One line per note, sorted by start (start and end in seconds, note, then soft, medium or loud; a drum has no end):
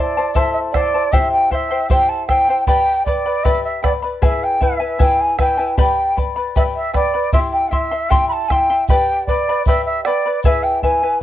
0.00 0.15 E4 medium
0.00 0.16 C5 medium
0.00 0.37 D5 medium
0.00 0.15 E5 soft
0.00 0.16 A5 medium
0.17 0.34 E4 soft
0.17 0.35 C5 soft
0.17 0.35 A5 medium
0.34 0.74 E4 medium
0.34 0.74 A4 medium
0.34 0.74 C5 medium
0.34 0.52 E5 medium
0.34 0.73 E5 medium
0.34 0.74 A5 medium
0.34 bombo low medium
0.34 shaker medium
0.53 0.59 E5 medium
0.72 0.94 E4 medium
0.72 0.94 C5 medium
0.72 1.13 D5 medium
0.72 0.93 E5 medium
0.72 bombo rim soft
0.72 bombo low medium
0.76 0.93 A5 medium
0.94 1.12 E4 soft
0.94 1.12 C5 medium
0.94 1.13 A5 soft
1.12 1.50 E4 medium
1.12 1.51 G4 medium
1.12 1.51 C5 medium
1.12 1.31 E5 medium
1.12 1.50 E5 medium
1.12 1.51 G5 medium
1.12 bombo low medium
1.12 shaker loud
1.32 1.52 G5 medium
1.51 1.71 E4 medium
1.51 1.70 C5 medium
1.51 1.71 E5 medium
1.51 1.90 E5 medium
1.51 1.55 F5 medium
1.51 1.69 G5 medium
1.51 bombo low soft
1.71 1.89 E4 soft
1.71 1.89 C5 medium
1.71 1.90 G5 soft
1.89 2.28 E4 medium
1.89 2.29 G4 medium
1.89 2.29 C5 medium
1.89 2.27 E5 medium
1.89 2.10 G5 loud
1.89 2.29 G5 medium
1.89 bombo low medium
1.89 shaker medium
2.09 2.26 A5 medium
2.27 2.48 E4 medium
2.27 2.48 C5 medium
2.27 2.48 E5 medium
2.27 2.64 G5 loud
2.27 2.48 G5 medium
2.27 bombo rim soft
2.27 bombo low soft
2.49 2.67 E4 soft
2.49 2.67 C5 soft
2.49 2.66 G5 medium
2.66 3.06 G4 medium
2.66 3.06 B4 medium
2.66 3.06 D5 medium
2.66 3.03 G5 loud
2.66 3.05 G5 medium
2.66 3.06 B5 medium
2.66 bombo low medium
2.66 shaker loud
3.05 3.25 B4 medium
3.05 3.45 D5 medium
3.05 3.25 D5 medium
3.05 3.26 G5 medium
3.05 3.24 B5 medium
3.05 bombo low soft
3.26 3.44 B4 soft
3.26 3.44 D5 medium
3.26 3.44 B5 medium
3.44 3.84 G4 medium
3.44 3.82 B4 medium
3.44 3.83 D5 medium
3.44 3.63 E5 loud
3.44 3.81 G5 medium
3.44 3.83 B5 medium
3.44 bombo low medium
3.44 shaker medium
3.64 3.82 E5 medium
3.83 4.03 B4 medium
3.83 3.92 D5 medium
3.83 4.02 D5 medium
3.83 4.03 G5 medium
3.83 4.01 B5 medium
3.83 bombo rim medium
3.83 bombo low medium
4.02 4.21 B4 soft
4.02 4.22 D5 soft
4.02 4.22 B5 soft
4.22 4.60 E4 medium
4.22 4.61 G#4 medium
4.22 4.61 B4 medium
4.22 4.59 E5 medium
4.22 4.45 E5 medium
4.22 4.61 G#5 medium
4.22 bombo low medium
4.22 shaker medium
4.43 4.64 G5 medium
4.61 4.80 E4 medium
4.61 4.79 B4 medium
4.61 4.80 E5 medium
4.61 5.02 E5 medium
4.61 4.79 G#5 medium
4.61 bombo low medium
4.80 4.98 E4 soft
4.80 4.99 B4 medium
4.80 4.99 G#5 medium
4.99 5.38 E4 medium
4.99 5.38 G#4 medium
4.99 5.38 B4 medium
4.99 5.37 E5 medium
4.99 5.22 G5 loud
4.99 5.38 G#5 medium
4.99 bombo low medium
4.99 shaker medium
5.20 5.39 G#5 medium
5.38 5.58 E4 medium
5.38 5.58 B4 medium
5.38 5.58 E5 medium
5.38 5.75 G5 medium
5.38 5.56 G#5 medium
5.38 bombo rim medium
5.38 bombo low medium
5.58 5.78 E4 soft
5.58 5.77 B4 soft
5.58 5.77 G#5 medium
5.77 6.16 G4 medium
5.77 6.16 B4 medium
5.77 6.17 D5 medium
5.77 6.16 G5 medium
5.77 6.14 G5 medium
5.77 6.17 B5 medium
5.77 bombo low medium
5.77 shaker medium
6.17 6.36 B4 medium
6.17 6.35 D5 medium
6.17 6.36 G5 medium
6.17 6.35 B5 medium
6.17 bombo low medium
6.36 6.55 B4 soft
6.36 6.56 D5 soft
6.36 6.55 B5 medium
6.56 6.94 G4 medium
6.56 6.93 B4 medium
6.56 6.93 D5 medium
6.56 6.62 E5 loud
6.56 6.92 G5 medium
6.56 6.94 B5 medium
6.56 bombo low medium
6.56 shaker medium
6.76 6.93 E5 medium
6.94 7.14 B4 medium
6.94 7.14 D5 medium
6.94 7.30 D5 medium
6.94 7.13 G5 medium
6.94 7.12 B5 medium
6.94 bombo rim soft
6.94 bombo low medium
7.14 7.33 B4 soft
7.14 7.33 D5 soft
7.14 7.33 B5 medium
7.33 7.71 E4 medium
7.33 7.72 G4 medium
7.33 7.39 E5 loud
7.33 7.71 E5 medium
7.33 7.70 G5 medium
7.33 7.71 C6 medium
7.33 bombo low medium
7.33 shaker medium
7.52 7.72 G5 medium
7.71 7.91 E4 medium
7.71 8.11 E5 medium
7.71 7.91 E5 medium
7.71 7.91 G5 medium
7.71 7.90 C6 medium
7.71 bombo low soft
7.91 8.10 E4 soft
7.91 8.10 E5 soft
7.91 8.10 C6 medium
8.10 8.49 E4 medium
8.10 8.49 G4 medium
8.10 8.49 E5 medium
8.10 8.27 G5 loud
8.10 8.49 G5 medium
8.10 8.50 C6 medium
8.10 bombo low medium
8.10 shaker medium
8.28 8.33 B5 medium
8.32 8.50 A5 loud
8.48 8.69 E4 medium
8.48 8.69 E5 medium
8.48 8.69 G5 medium
8.48 8.87 G5 medium
8.48 8.53 G#5 medium
8.48 8.69 C6 medium
8.48 bombo rim medium
8.48 bombo low medium
8.70 8.89 E4 soft
8.70 8.89 E5 soft
8.70 8.89 C6 soft
8.88 9.27 G4 medium
8.88 9.27 B4 medium
8.88 9.28 D5 medium
8.88 9.24 G5 loud
8.88 9.27 G5 medium
8.88 9.28 B5 medium
8.88 bombo low medium
8.88 shaker loud
9.27 9.47 B4 medium
9.27 9.63 D5 medium
9.27 9.47 D5 medium
9.27 9.47 G5 medium
9.27 9.48 B5 medium
9.27 bombo low soft
9.49 9.67 B4 soft
9.49 9.67 D5 medium
9.49 9.67 B5 medium
9.66 10.05 G4 medium
9.66 10.05 B4 medium
9.66 10.06 D5 medium
9.66 9.84 E5 loud
9.66 10.05 G5 medium
9.66 10.06 B5 medium
9.66 bombo low medium
9.66 shaker medium
9.85 10.03 E5 medium
10.04 10.25 B4 medium
10.04 10.40 D5 medium
10.04 10.25 D5 medium
10.04 10.24 G5 medium
10.04 10.24 B5 medium
10.04 bombo rim medium
10.26 10.44 B4 soft
10.26 10.44 D5 medium
10.26 10.44 B5 medium
10.43 10.82 E4 medium
10.43 10.83 G#4 medium
10.43 10.83 B4 medium
10.43 10.82 E5 medium
10.43 10.48 F5 medium
10.43 10.83 G#5 medium
10.43 bombo low medium
10.43 shaker medium
10.47 10.64 E5 loud
10.63 10.82 G5 medium
10.83 11.02 E4 medium
10.83 11.02 B4 medium
10.83 11.02 E5 medium
10.83 11.18 G#5 medium
10.83 11.02 G#5 medium
10.83 bombo low medium
11.03 11.21 E4 soft
11.03 11.21 B4 medium
11.03 11.21 G#5 medium